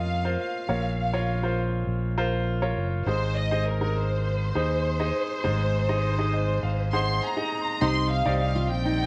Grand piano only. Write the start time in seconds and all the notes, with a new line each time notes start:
Already playing: A#2 F4 A#4 C5 C#5 D#5
0.24 F4 A#4 C5
0.69 A#2 F4 A#4 C#5
1.13 F4 A#4 C#5
1.43 F4 A#4 C5
2.18 F4 A#4 C5
2.62 F4 A#4 C#5
3.07 G#2 D#4 G#4 C5
3.51 D#4 G#4 C5
3.81 D#4 G#4 A#4
4.55 D#4 G#4 C5
5.00 D#4 G#4 D#5
5.44 G#2 D#4 G#4 C5
5.89 D#4 G#4 D#5
6.18 D#4 G#4 D#5
6.34 D#5
6.63 F5
6.93 D#4 G#4 C5 F#5
7.23 G#5
7.37 D#4 G#4 D#5
7.62 C6
7.81 C3 D#4 G4 C5 D#5
8.25 D#4 G4 C5 D5